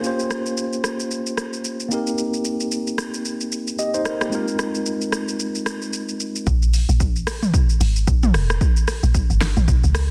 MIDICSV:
0, 0, Header, 1, 4, 480
1, 0, Start_track
1, 0, Tempo, 535714
1, 34, Time_signature, 4, 2, 24, 8
1, 9056, End_track
2, 0, Start_track
2, 0, Title_t, "Tine electric piano"
2, 0, Program_c, 0, 4
2, 0, Control_c, 0, 64, 127
2, 10, Note_on_c, 0, 58, 74
2, 22, Note_on_c, 0, 61, 67
2, 34, Note_on_c, 0, 65, 67
2, 47, Control_c, 0, 64, 0
2, 47, Note_on_c, 0, 67, 64
2, 58, Note_on_c, 0, 72, 83
2, 205, Control_c, 0, 64, 127
2, 1668, Note_off_c, 0, 58, 0
2, 1674, Note_off_c, 0, 61, 0
2, 1680, Note_off_c, 0, 65, 0
2, 1687, Note_off_c, 0, 67, 0
2, 1689, Note_on_c, 0, 58, 75
2, 1693, Note_off_c, 0, 72, 0
2, 1702, Note_on_c, 0, 60, 66
2, 1714, Note_on_c, 0, 63, 68
2, 1725, Control_c, 0, 64, 0
2, 1726, Note_on_c, 0, 67, 65
2, 1738, Note_on_c, 0, 70, 77
2, 1902, Control_c, 0, 64, 127
2, 3348, Note_off_c, 0, 58, 0
2, 3354, Note_off_c, 0, 60, 0
2, 3360, Note_off_c, 0, 63, 0
2, 3366, Note_off_c, 0, 67, 0
2, 3373, Note_off_c, 0, 70, 0
2, 3394, Note_on_c, 0, 75, 65
2, 3399, Note_on_c, 0, 67, 54
2, 3526, Note_off_c, 0, 75, 0
2, 3529, Note_off_c, 0, 67, 0
2, 3532, Note_on_c, 0, 72, 70
2, 3538, Note_on_c, 0, 63, 61
2, 3628, Note_off_c, 0, 72, 0
2, 3632, Note_off_c, 0, 63, 0
2, 3633, Note_on_c, 0, 70, 72
2, 3765, Note_off_c, 0, 70, 0
2, 3773, Note_on_c, 0, 67, 61
2, 3778, Note_on_c, 0, 58, 55
2, 3849, Note_on_c, 0, 56, 72
2, 3861, Note_on_c, 0, 60, 67
2, 3874, Note_on_c, 0, 63, 67
2, 3884, Control_c, 0, 64, 0
2, 3886, Note_on_c, 0, 65, 65
2, 3898, Note_on_c, 0, 70, 79
2, 4001, Note_off_c, 0, 67, 0
2, 4004, Note_off_c, 0, 58, 0
2, 4060, Control_c, 0, 64, 127
2, 5746, Note_off_c, 0, 56, 0
2, 5752, Note_off_c, 0, 60, 0
2, 5758, Note_off_c, 0, 63, 0
2, 5764, Note_off_c, 0, 65, 0
2, 5770, Note_off_c, 0, 70, 0
2, 5803, Control_c, 0, 64, 0
2, 9056, End_track
3, 0, Start_track
3, 0, Title_t, "Log drum bass"
3, 0, Program_c, 1, 39
3, 5795, Note_on_c, 1, 34, 114
3, 6147, Note_off_c, 1, 34, 0
3, 6173, Note_on_c, 1, 34, 99
3, 6490, Note_off_c, 1, 34, 0
3, 6994, Note_on_c, 1, 32, 91
3, 7217, Note_off_c, 1, 32, 0
3, 7235, Note_on_c, 1, 34, 105
3, 7458, Note_off_c, 1, 34, 0
3, 7474, Note_on_c, 1, 29, 97
3, 7697, Note_off_c, 1, 29, 0
3, 8093, Note_on_c, 1, 34, 97
3, 8316, Note_off_c, 1, 34, 0
3, 8333, Note_on_c, 1, 31, 86
3, 8556, Note_off_c, 1, 31, 0
3, 8574, Note_on_c, 1, 34, 101
3, 8667, Note_off_c, 1, 34, 0
3, 8673, Note_on_c, 1, 34, 101
3, 8803, Note_off_c, 1, 34, 0
3, 8814, Note_on_c, 1, 37, 97
3, 9037, Note_off_c, 1, 37, 0
3, 9056, End_track
4, 0, Start_track
4, 0, Title_t, "Drums"
4, 34, Note_on_c, 9, 82, 61
4, 123, Note_off_c, 9, 82, 0
4, 173, Note_on_c, 9, 82, 52
4, 262, Note_off_c, 9, 82, 0
4, 274, Note_on_c, 9, 37, 88
4, 274, Note_on_c, 9, 82, 75
4, 363, Note_off_c, 9, 82, 0
4, 364, Note_off_c, 9, 37, 0
4, 412, Note_on_c, 9, 82, 55
4, 502, Note_off_c, 9, 82, 0
4, 513, Note_on_c, 9, 82, 82
4, 603, Note_off_c, 9, 82, 0
4, 652, Note_on_c, 9, 82, 47
4, 742, Note_off_c, 9, 82, 0
4, 752, Note_on_c, 9, 37, 91
4, 754, Note_on_c, 9, 82, 90
4, 842, Note_off_c, 9, 37, 0
4, 844, Note_off_c, 9, 82, 0
4, 893, Note_on_c, 9, 82, 57
4, 983, Note_off_c, 9, 82, 0
4, 994, Note_on_c, 9, 82, 66
4, 1083, Note_off_c, 9, 82, 0
4, 1133, Note_on_c, 9, 82, 55
4, 1223, Note_off_c, 9, 82, 0
4, 1232, Note_on_c, 9, 37, 89
4, 1234, Note_on_c, 9, 82, 90
4, 1322, Note_off_c, 9, 37, 0
4, 1324, Note_off_c, 9, 82, 0
4, 1372, Note_on_c, 9, 82, 55
4, 1461, Note_off_c, 9, 82, 0
4, 1474, Note_on_c, 9, 82, 80
4, 1564, Note_off_c, 9, 82, 0
4, 1612, Note_on_c, 9, 82, 50
4, 1702, Note_off_c, 9, 82, 0
4, 1714, Note_on_c, 9, 82, 78
4, 1803, Note_off_c, 9, 82, 0
4, 1853, Note_on_c, 9, 82, 54
4, 1943, Note_off_c, 9, 82, 0
4, 1953, Note_on_c, 9, 82, 63
4, 2043, Note_off_c, 9, 82, 0
4, 2093, Note_on_c, 9, 82, 53
4, 2182, Note_off_c, 9, 82, 0
4, 2192, Note_on_c, 9, 82, 74
4, 2282, Note_off_c, 9, 82, 0
4, 2331, Note_on_c, 9, 82, 51
4, 2421, Note_off_c, 9, 82, 0
4, 2433, Note_on_c, 9, 82, 76
4, 2523, Note_off_c, 9, 82, 0
4, 2572, Note_on_c, 9, 82, 48
4, 2662, Note_off_c, 9, 82, 0
4, 2672, Note_on_c, 9, 37, 91
4, 2674, Note_on_c, 9, 82, 85
4, 2761, Note_off_c, 9, 37, 0
4, 2763, Note_off_c, 9, 82, 0
4, 2812, Note_on_c, 9, 82, 55
4, 2902, Note_off_c, 9, 82, 0
4, 2913, Note_on_c, 9, 82, 72
4, 3002, Note_off_c, 9, 82, 0
4, 3051, Note_on_c, 9, 82, 55
4, 3141, Note_off_c, 9, 82, 0
4, 3154, Note_on_c, 9, 82, 91
4, 3243, Note_off_c, 9, 82, 0
4, 3291, Note_on_c, 9, 82, 54
4, 3381, Note_off_c, 9, 82, 0
4, 3393, Note_on_c, 9, 82, 80
4, 3482, Note_off_c, 9, 82, 0
4, 3531, Note_on_c, 9, 82, 52
4, 3621, Note_off_c, 9, 82, 0
4, 3633, Note_on_c, 9, 37, 92
4, 3633, Note_on_c, 9, 82, 77
4, 3723, Note_off_c, 9, 37, 0
4, 3723, Note_off_c, 9, 82, 0
4, 3773, Note_on_c, 9, 82, 50
4, 3774, Note_on_c, 9, 37, 100
4, 3862, Note_off_c, 9, 82, 0
4, 3864, Note_off_c, 9, 37, 0
4, 3873, Note_on_c, 9, 82, 60
4, 3962, Note_off_c, 9, 82, 0
4, 4011, Note_on_c, 9, 82, 52
4, 4101, Note_off_c, 9, 82, 0
4, 4112, Note_on_c, 9, 82, 71
4, 4113, Note_on_c, 9, 37, 86
4, 4202, Note_off_c, 9, 82, 0
4, 4203, Note_off_c, 9, 37, 0
4, 4252, Note_on_c, 9, 82, 53
4, 4342, Note_off_c, 9, 82, 0
4, 4354, Note_on_c, 9, 82, 81
4, 4443, Note_off_c, 9, 82, 0
4, 4493, Note_on_c, 9, 82, 49
4, 4582, Note_off_c, 9, 82, 0
4, 4592, Note_on_c, 9, 37, 93
4, 4594, Note_on_c, 9, 82, 89
4, 4681, Note_off_c, 9, 37, 0
4, 4683, Note_off_c, 9, 82, 0
4, 4733, Note_on_c, 9, 82, 55
4, 4823, Note_off_c, 9, 82, 0
4, 4834, Note_on_c, 9, 82, 73
4, 4923, Note_off_c, 9, 82, 0
4, 4973, Note_on_c, 9, 82, 55
4, 5062, Note_off_c, 9, 82, 0
4, 5073, Note_on_c, 9, 37, 95
4, 5075, Note_on_c, 9, 82, 86
4, 5162, Note_off_c, 9, 37, 0
4, 5165, Note_off_c, 9, 82, 0
4, 5213, Note_on_c, 9, 82, 53
4, 5303, Note_off_c, 9, 82, 0
4, 5314, Note_on_c, 9, 82, 81
4, 5404, Note_off_c, 9, 82, 0
4, 5453, Note_on_c, 9, 82, 49
4, 5543, Note_off_c, 9, 82, 0
4, 5555, Note_on_c, 9, 82, 75
4, 5645, Note_off_c, 9, 82, 0
4, 5695, Note_on_c, 9, 82, 52
4, 5784, Note_off_c, 9, 82, 0
4, 5795, Note_on_c, 9, 36, 121
4, 5795, Note_on_c, 9, 82, 68
4, 5884, Note_off_c, 9, 82, 0
4, 5885, Note_off_c, 9, 36, 0
4, 5934, Note_on_c, 9, 82, 56
4, 6024, Note_off_c, 9, 82, 0
4, 6034, Note_on_c, 9, 46, 49
4, 6034, Note_on_c, 9, 82, 81
4, 6124, Note_off_c, 9, 46, 0
4, 6124, Note_off_c, 9, 82, 0
4, 6175, Note_on_c, 9, 82, 56
4, 6264, Note_off_c, 9, 82, 0
4, 6275, Note_on_c, 9, 36, 98
4, 6275, Note_on_c, 9, 82, 86
4, 6364, Note_off_c, 9, 36, 0
4, 6365, Note_off_c, 9, 82, 0
4, 6414, Note_on_c, 9, 82, 53
4, 6504, Note_off_c, 9, 82, 0
4, 6514, Note_on_c, 9, 37, 104
4, 6516, Note_on_c, 9, 46, 55
4, 6516, Note_on_c, 9, 82, 98
4, 6603, Note_off_c, 9, 37, 0
4, 6605, Note_off_c, 9, 46, 0
4, 6605, Note_off_c, 9, 82, 0
4, 6653, Note_on_c, 9, 45, 70
4, 6655, Note_on_c, 9, 82, 61
4, 6743, Note_off_c, 9, 45, 0
4, 6744, Note_off_c, 9, 82, 0
4, 6753, Note_on_c, 9, 36, 113
4, 6755, Note_on_c, 9, 82, 74
4, 6842, Note_off_c, 9, 36, 0
4, 6844, Note_off_c, 9, 82, 0
4, 6893, Note_on_c, 9, 82, 61
4, 6983, Note_off_c, 9, 82, 0
4, 6996, Note_on_c, 9, 46, 59
4, 6996, Note_on_c, 9, 82, 94
4, 7086, Note_off_c, 9, 46, 0
4, 7086, Note_off_c, 9, 82, 0
4, 7133, Note_on_c, 9, 82, 59
4, 7223, Note_off_c, 9, 82, 0
4, 7235, Note_on_c, 9, 36, 97
4, 7235, Note_on_c, 9, 82, 88
4, 7325, Note_off_c, 9, 36, 0
4, 7325, Note_off_c, 9, 82, 0
4, 7373, Note_on_c, 9, 82, 53
4, 7376, Note_on_c, 9, 45, 102
4, 7463, Note_off_c, 9, 82, 0
4, 7466, Note_off_c, 9, 45, 0
4, 7475, Note_on_c, 9, 37, 99
4, 7475, Note_on_c, 9, 46, 48
4, 7475, Note_on_c, 9, 82, 80
4, 7564, Note_off_c, 9, 37, 0
4, 7564, Note_off_c, 9, 46, 0
4, 7564, Note_off_c, 9, 82, 0
4, 7615, Note_on_c, 9, 82, 60
4, 7616, Note_on_c, 9, 37, 102
4, 7704, Note_off_c, 9, 82, 0
4, 7706, Note_off_c, 9, 37, 0
4, 7714, Note_on_c, 9, 82, 68
4, 7715, Note_on_c, 9, 36, 121
4, 7804, Note_off_c, 9, 82, 0
4, 7805, Note_off_c, 9, 36, 0
4, 7854, Note_on_c, 9, 82, 57
4, 7943, Note_off_c, 9, 82, 0
4, 7954, Note_on_c, 9, 37, 92
4, 7954, Note_on_c, 9, 46, 47
4, 7954, Note_on_c, 9, 82, 80
4, 8043, Note_off_c, 9, 46, 0
4, 8043, Note_off_c, 9, 82, 0
4, 8044, Note_off_c, 9, 37, 0
4, 8094, Note_on_c, 9, 82, 59
4, 8183, Note_off_c, 9, 82, 0
4, 8194, Note_on_c, 9, 36, 97
4, 8195, Note_on_c, 9, 82, 84
4, 8284, Note_off_c, 9, 36, 0
4, 8284, Note_off_c, 9, 82, 0
4, 8333, Note_on_c, 9, 82, 51
4, 8423, Note_off_c, 9, 82, 0
4, 8433, Note_on_c, 9, 37, 100
4, 8433, Note_on_c, 9, 38, 72
4, 8435, Note_on_c, 9, 46, 57
4, 8435, Note_on_c, 9, 82, 95
4, 8523, Note_off_c, 9, 37, 0
4, 8523, Note_off_c, 9, 38, 0
4, 8525, Note_off_c, 9, 46, 0
4, 8525, Note_off_c, 9, 82, 0
4, 8572, Note_on_c, 9, 45, 74
4, 8573, Note_on_c, 9, 82, 61
4, 8662, Note_off_c, 9, 45, 0
4, 8663, Note_off_c, 9, 82, 0
4, 8672, Note_on_c, 9, 36, 115
4, 8674, Note_on_c, 9, 82, 75
4, 8762, Note_off_c, 9, 36, 0
4, 8763, Note_off_c, 9, 82, 0
4, 8813, Note_on_c, 9, 82, 60
4, 8902, Note_off_c, 9, 82, 0
4, 8912, Note_on_c, 9, 37, 102
4, 8915, Note_on_c, 9, 46, 55
4, 8915, Note_on_c, 9, 82, 97
4, 9002, Note_off_c, 9, 37, 0
4, 9004, Note_off_c, 9, 46, 0
4, 9004, Note_off_c, 9, 82, 0
4, 9056, End_track
0, 0, End_of_file